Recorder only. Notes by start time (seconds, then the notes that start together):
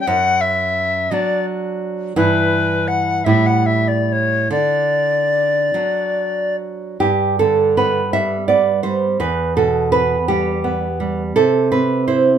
0.00 G5
0.07 F#5
0.41 E5
1.10 D5 D#5
2.17 B4
2.88 F#5
3.25 E5
3.46 F#5
3.66 E5
3.88 D5
4.09 C#5 D5
4.52 D5